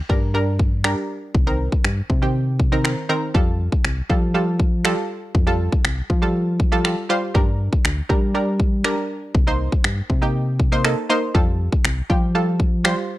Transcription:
0.09 fm bass G2, synth pluck G3 D4 A#4, kick
0.34 synth pluck G3 D4 A#4
0.59 kick
0.84 synth pluck G3 D4 A#4, finger snap
1.34 fm bass C2, kick
1.47 synth pluck D#3 C4 A#4
1.72 kick
1.84 fm bass G2, finger snap
2.10 fm bass C3, kick
2.22 synth pluck D#3 C4 G4
2.60 kick
2.72 synth pluck D#3 C4 A#4
2.84 synth pluck D#3 C4 A#4, finger snap
3.09 synth pluck D#3 C4 A#4
3.34 fm bass F2, synth pluck G3 F4 A4, kick
3.72 kick
3.85 fm bass C2, finger snap
4.09 fm bass F3, synth pluck G3 F4 A4, kick
4.34 synth pluck G3 F4 A4
4.60 kick
4.84 synth pluck G3 F4 A4, finger snap
5.35 fm bass F2, kick
5.47 synth pluck G3 F4 A4
5.72 kick
5.85 fm bass C2, finger snap
6.10 fm bass F3, kick
6.22 synth pluck G3 F4 A4
6.60 kick
6.72 synth pluck G3 F4 A4
6.84 synth pluck G3 F4 A4, finger snap
7.09 synth pluck G3 F4 C5
7.34 fm bass G2, synth pluck G3 D4 A#4, kick
7.73 kick
7.85 fm bass D2, finger snap
8.09 synth pluck G3 D4 A#4, fm bass G3, kick
8.34 synth pluck G3 D4 A#4
8.60 kick
8.84 synth pluck G3 D4 A#4, finger snap
9.35 fm bass C2, kick
9.47 synth pluck A#3 D#4 C5
9.72 kick
9.84 fm bass G2, finger snap
10.10 fm bass C3, kick
10.22 synth pluck A#3 D#4 G4
10.60 kick
10.72 synth pluck A#3 D#4 C5
10.85 synth pluck A#3 D#4 A4, finger snap
11.09 synth pluck A#3 D#4 C5
11.34 fm bass F2, synth pluck G3 F4 A4, kick
11.72 kick
11.85 fm bass C2, finger snap
12.10 fm bass F3, synth pluck G3 F4 G4, kick
12.35 synth pluck G3 F4 A4
12.60 kick
12.84 synth pluck G3 F4 C5, finger snap

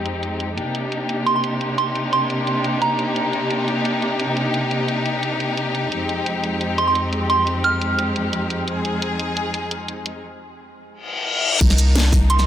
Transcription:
Already playing: string section F2 G#3 C4 D#4 G4
0.06 closed hi-hat
0.23 closed hi-hat
0.40 closed hi-hat
0.58 string section C3 A#3 D4 D#4 G4, closed hi-hat
0.75 closed hi-hat
0.92 closed hi-hat
1.09 closed hi-hat
1.26 synth bell C6, closed hi-hat
1.36 synth bell C6
1.44 closed hi-hat
1.61 closed hi-hat
1.78 synth bell C6, closed hi-hat
1.95 closed hi-hat
2.13 synth bell C6, closed hi-hat
2.30 closed hi-hat
2.47 closed hi-hat
2.64 closed hi-hat
2.82 synth bell A#5, closed hi-hat
2.99 closed hi-hat
3.16 closed hi-hat
3.33 closed hi-hat
3.51 closed hi-hat
3.68 closed hi-hat
3.85 closed hi-hat
4.02 closed hi-hat
4.20 closed hi-hat
4.37 closed hi-hat
4.54 closed hi-hat
4.71 closed hi-hat
4.88 closed hi-hat
5.06 closed hi-hat
5.23 closed hi-hat
5.40 closed hi-hat
5.57 closed hi-hat
5.75 closed hi-hat
5.92 string section F2 G#3 C4, closed hi-hat
6.09 closed hi-hat
6.26 closed hi-hat
6.44 closed hi-hat
6.61 closed hi-hat
6.78 synth bell C6, closed hi-hat
6.88 synth bell C6
6.95 closed hi-hat
7.13 closed hi-hat
7.30 synth bell C6, closed hi-hat
7.47 closed hi-hat
7.64 synth bell F6, closed hi-hat
7.81 closed hi-hat
7.99 closed hi-hat
8.16 closed hi-hat
8.33 closed hi-hat
8.50 closed hi-hat
8.68 string section G#4, closed hi-hat
8.85 closed hi-hat
9.02 closed hi-hat
9.20 closed hi-hat
9.37 closed hi-hat
9.54 closed hi-hat
9.71 closed hi-hat
9.88 closed hi-hat
10.06 closed hi-hat
10.92 reverse cymbal
11.61 sub bass C2, string section A#3 D4 D#4, kick, closed hi-hat, crash
11.70 snare, shaker
11.78 closed hi-hat, shaker
11.96 snare, closed hi-hat
12.13 kick, open hi-hat, shaker
12.30 synth bell C6, closed hi-hat
12.39 synth bell C6, snare, shaker

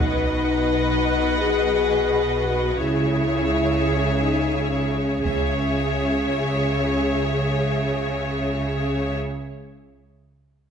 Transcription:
0.00 double bass section B1, cello section B2, french horn section D#4, viola section B4, violin section D#5 F#5, taiko
1.39 french horn section G#4
2.46 french horn section F#4
2.78 double bass section C#2, cello section C#3, french horn section E4, viola section G#4, violin section C#5 E5
4.21 french horn section D#4
4.55 french horn section C#4
5.25 double bass section C#2, cello section C#3, french horn section C#4, viola section G#4, violin section C#5 E5, taiko

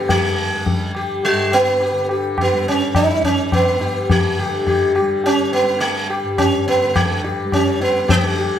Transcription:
Already playing: tanpura G2 D3 G3, sitar B3
0.08 tanpura G3, sitar G#3, tabla tin, tabla ge
0.66 tanpura G3, tabla tin, tabla ge
0.95 sitar G4, tabla na
1.24 sitar G3, tabla tin
1.31 tanpura G2
1.52 sitar B3, tabla na
1.80 sitar G4, tabla tin
1.92 tanpura D3
2.09 sitar G4, tabla na
2.38 sitar B3, tabla na, tabla ge
2.52 tanpura G3
2.68 sitar C#4
2.95 sitar D#4, tabla na, tabla ge
3.17 tanpura G3
3.24 sitar C#4, tabla ge
3.52 sitar B3, tabla na, tabla ge
3.77 tanpura G2, tabla te
3.81 sitar G4
4.10 sitar G#3, tabla tin, tabla ge
4.38 tanpura D3, sitar G4
4.67 sitar G4, tabla tin, tabla ge
4.95 sitar G4, tabla na
5.00 tanpura G3
5.24 sitar C#4, tabla tin
5.53 sitar B3, tabla na
5.62 tanpura G3
5.80 sitar G#3, tabla tin
6.10 sitar G4, tabla na
6.24 tanpura G2
6.38 sitar C#4, tabla na, tabla ge
6.68 sitar B3
6.83 tanpura D3
6.96 sitar G#3, tabla na, tabla ge
7.24 sitar G4, tabla te
7.45 tanpura G3
7.52 sitar C#4, tabla na, tabla ge
7.81 sitar B3, tabla te
8.08 tanpura D3, sitar G#3 G4, tabla tin, tabla ge
8.36 sitar G4

